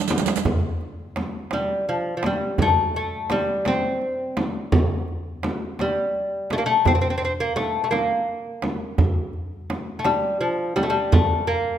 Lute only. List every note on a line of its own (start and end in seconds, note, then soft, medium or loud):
1.53 1.88 G3 medium
1.89 2.16 F3 medium
2.17 2.23 F3 medium
2.26 2.61 G3 medium
2.62 2.95 A3 medium
2.96 3.32 A3 medium
3.31 3.64 G3 medium
3.68 4.43 C4 medium
5.81 6.53 G3 medium
6.53 6.57 A3 medium
6.58 6.64 A#3 medium
6.66 6.87 A3 medium
6.87 6.94 C4 medium
6.95 7.00 C4 medium
7.01 7.09 C4 medium
7.10 7.16 C4 medium
7.18 7.23 C4 medium
7.25 7.32 C4 medium
7.40 7.55 A#3 medium
7.56 7.83 A3 medium
7.84 7.90 A3 medium
7.91 8.94 A#3 medium
9.99 10.06 A3 medium
10.05 10.39 G3 medium
10.41 10.75 F3 medium
10.76 10.84 G3 medium
10.83 10.90 A3 medium
10.90 11.13 G3 medium
11.12 11.47 A3 medium
11.47 11.78 A#3 medium